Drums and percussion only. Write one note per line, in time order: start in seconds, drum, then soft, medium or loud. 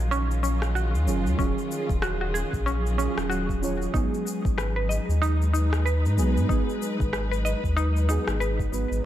0.12 shaker soft
0.31 shaker soft
0.44 shaker medium
0.62 cross-stick medium
0.62 shaker soft
0.76 shaker soft
0.95 shaker soft
1.08 shaker medium
1.27 shaker soft
1.39 kick loud
1.39 shaker soft
1.58 shaker soft
1.71 shaker medium
1.89 kick loud
1.89 shaker soft
2.02 cross-stick medium
2.02 shaker soft
2.35 shaker medium
2.53 kick medium
2.53 shaker soft
2.67 shaker soft
2.86 shaker soft
2.99 shaker medium
3.18 cross-stick medium
3.18 shaker soft
3.31 shaker soft
3.49 kick medium
3.49 shaker soft
3.63 shaker medium
3.82 shaker soft
3.94 kick loud
3.94 shaker soft
4.14 shaker soft
4.27 shaker medium
4.45 kick loud
4.45 shaker soft
4.58 cross-stick medium
4.58 shaker soft
4.91 shaker medium
5.10 shaker soft
5.23 shaker soft
5.42 shaker soft
5.55 shaker medium
5.73 cross-stick medium
5.73 shaker soft
5.87 shaker soft
6.06 shaker soft
6.18 shaker medium
6.37 shaker soft
6.50 kick loud
6.50 shaker soft
6.69 shaker soft
6.82 shaker medium
7.00 kick loud
7.00 shaker soft
7.13 cross-stick medium
7.13 shaker soft
7.33 shaker soft
7.46 shaker medium
7.64 kick medium
7.64 shaker soft
7.78 shaker soft
7.97 shaker soft
8.09 shaker medium
8.28 cross-stick medium
8.28 shaker soft
8.41 shaker soft
8.59 kick medium
8.59 shaker soft
8.73 shaker medium
8.92 shaker soft